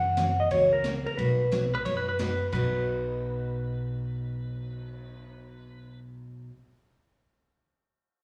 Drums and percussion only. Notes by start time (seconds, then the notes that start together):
0.17 kick, snare, hi-hat pedal, ride
0.51 kick, ride
0.84 kick, snare, hi-hat pedal, ride
1.06 ride
1.18 kick, ride
1.52 kick, snare, hi-hat pedal, ride
1.86 kick, ride
2.19 kick, snare, hi-hat pedal, ride
2.52 kick, crash
2.74 cymbal swell